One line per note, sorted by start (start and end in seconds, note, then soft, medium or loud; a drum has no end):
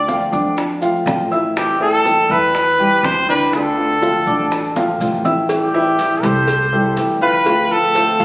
0.00 0.26 D2 medium
0.00 0.34 D5 loud
0.07 0.56 D3 medium
0.07 0.28 F3 medium
0.07 0.56 A3 medium
0.07 0.56 C4 medium
0.07 0.28 F4 medium
0.07 0.57 F4 medium
0.07 0.28 F5 medium
0.07 high bongo medium
0.07 maracas medium
0.32 1.03 F2 loud
0.32 0.73 D4 medium
0.32 0.73 D5 medium
0.32 0.73 D6 medium
0.32 high bongo soft
0.32 maracas soft
0.57 muted nylon-string guitar stroke medium
0.57 high bongo medium
0.57 maracas medium
0.81 1.22 F3 medium
0.81 1.05 A3 soft
0.81 1.06 C4 soft
0.81 1.05 F4 medium
0.81 1.22 F4 medium
0.81 1.23 F5 medium
0.81 maracas medium
1.06 2.23 A1 medium
1.06 1.30 D3 medium
1.06 1.30 A3 medium
1.06 1.31 C4 medium
1.06 1.30 F4 medium
1.06 high bongo medium
1.06 low bongo medium
1.06 maracas medium
1.31 1.56 A3 soft
1.31 1.55 C4 soft
1.31 1.72 E4 medium
1.31 1.55 F4 medium
1.31 1.72 E5 medium
1.31 1.72 E6 medium
1.31 high bongo soft
1.31 maracas soft
1.56 1.80 E3 medium
1.56 1.80 G3 medium
1.56 1.80 C4 medium
1.56 1.79 E4 medium
1.56 1.80 G4 medium
1.56 high bongo medium
1.56 maracas medium
1.80 2.03 G3 soft
1.80 2.21 A3 medium
1.80 2.04 C4 soft
1.80 2.04 E4 soft
1.80 2.21 A4 medium
1.80 2.32 A4 loud
1.80 2.21 A5 medium
2.04 2.53 E3 medium
2.04 2.53 G3 medium
2.04 2.53 C4 medium
2.04 2.54 E4 medium
2.04 high bongo medium
2.04 maracas medium
2.29 2.99 E2 medium
2.29 2.70 E4 medium
2.29 3.06 B4 loud
2.29 2.71 E5 medium
2.29 2.71 E6 medium
2.29 maracas soft
2.54 muted nylon-string guitar stroke medium
2.54 high bongo medium
2.54 maracas medium
2.78 3.20 G3 medium
2.78 3.03 G3 soft
2.78 3.03 C4 soft
2.78 3.02 E4 medium
2.78 3.20 G4 medium
2.78 3.20 G5 medium
3.03 4.20 D2 loud
3.03 3.27 E3 medium
3.03 3.27 G3 medium
3.03 3.28 C4 medium
3.03 3.27 E4 medium
3.03 3.29 C5 loud
3.03 high bongo medium
3.03 low bongo medium
3.03 maracas medium
3.28 3.49 D3 medium
3.28 3.53 G3 soft
3.28 3.52 C4 soft
3.28 3.49 D4 medium
3.28 3.52 E4 soft
3.28 3.52 B4 loud
3.28 3.49 D5 medium
3.28 maracas soft
3.53 3.76 D3 medium
3.53 3.93 D3 medium
3.53 3.77 A3 medium
3.53 3.77 C4 medium
3.53 3.93 D4 medium
3.53 3.76 F4 medium
3.53 4.97 A4 loud
3.53 3.94 D5 medium
3.53 high bongo medium
3.53 maracas medium
3.78 4.01 A3 soft
3.78 4.02 C4 soft
3.78 4.01 F4 soft
3.78 high bongo soft
4.01 4.50 D3 medium
4.01 4.22 F3 medium
4.01 4.50 A3 medium
4.01 4.51 C4 medium
4.01 4.22 F4 medium
4.01 4.51 F4 medium
4.01 4.22 F5 medium
4.01 high bongo medium
4.01 maracas medium
4.27 4.96 A1 medium
4.27 4.67 D4 medium
4.27 4.67 D5 medium
4.27 4.67 D6 medium
4.27 high bongo soft
4.27 maracas soft
4.51 muted nylon-string guitar stroke medium
4.51 high bongo medium
4.51 maracas medium
4.75 5.16 F3 medium
4.75 4.99 A3 soft
4.75 5.00 C4 soft
4.75 4.99 F4 soft
4.75 5.17 F4 medium
4.75 5.17 F5 medium
4.75 high bongo medium
4.75 maracas medium
5.00 6.17 A1 medium
5.00 5.24 D3 medium
5.00 5.24 A3 medium
5.00 5.24 C4 medium
5.00 5.23 F4 medium
5.00 maracas medium
5.24 5.49 A3 soft
5.24 5.49 C4 soft
5.24 5.45 E4 medium
5.24 5.48 F4 soft
5.24 5.45 E5 medium
5.24 5.45 E6 medium
5.24 low bongo medium
5.24 maracas soft
5.49 5.73 E3 medium
5.49 5.73 G3 medium
5.49 5.74 C4 medium
5.49 5.73 E4 medium
5.49 6.26 G4 medium
5.49 cowbell loud
5.49 maracas medium
5.74 6.14 E3 medium
5.74 5.98 G3 soft
5.74 5.98 C4 soft
5.74 5.98 E4 medium
5.74 6.15 E4 loud
5.74 6.15 E5 loud
5.99 6.46 E3 medium
5.99 6.47 G3 medium
5.99 6.47 C4 medium
5.99 6.48 E4 medium
5.99 cowbell medium
5.99 maracas medium
6.23 6.93 C2 medium
6.23 6.63 G3 medium
6.23 6.64 G4 medium
6.23 6.64 A4 medium
6.23 6.98 C5 loud
6.23 cowbell medium
6.23 maracas soft
6.48 muted nylon-string guitar stroke medium
6.48 cowbell loud
6.48 maracas medium
6.72 7.13 G3 medium
6.72 6.96 G3 soft
6.72 6.97 C4 soft
6.72 6.96 E4 medium
6.72 7.13 G4 medium
6.72 7.13 A4 medium
6.97 8.14 D2 medium
6.97 7.21 E3 medium
6.97 7.21 G3 medium
6.97 7.21 C4 medium
6.97 7.20 E4 medium
6.97 cowbell medium
6.97 maracas medium
7.21 7.42 F3 medium
7.21 7.46 G3 soft
7.21 7.46 C4 soft
7.21 7.45 E4 medium
7.21 7.42 F4 loud
7.21 7.73 B4 loud
7.21 7.42 F5 medium
7.21 maracas soft
7.45 7.70 D3 medium
7.45 7.86 F3 medium
7.45 7.70 A3 medium
7.45 7.70 C4 medium
7.45 7.86 F4 medium
7.45 7.70 F4 medium
7.45 7.86 F5 medium
7.45 cowbell loud
7.45 maracas medium
7.71 7.95 A3 soft
7.71 7.95 C4 medium
7.71 7.95 F4 medium
7.71 8.25 A4 loud
7.95 8.25 D3 medium
7.95 8.15 A3 medium
7.95 8.25 A3 medium
7.95 8.25 C4 medium
7.95 8.25 F4 medium
7.95 8.15 A4 medium
7.95 8.15 C5 medium
7.95 cowbell medium
7.95 maracas medium
8.19 8.25 A1 medium
8.19 8.25 F3 medium
8.19 8.25 F4 medium
8.19 8.25 F5 medium
8.19 maracas soft